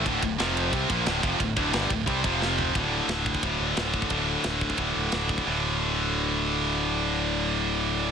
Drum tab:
RD |x-x-x-x-x-x-x-x-|x-x-x-x-x-x-----|b---b---b---b---|b---b---b---b---|
SD |----o-------o---|----o-------o---|----o-------o---|----o-------o---|
FT |----------------|--------------o-|----------------|----------------|
BD |o-o-----o-o---o-|o-o---o-o-o-----|o-----ooo-----oo|o-----ooo-----oo|

RD |----------------|----------------|
SD |----------------|----------------|
FT |----------------|----------------|
BD |----------------|----------------|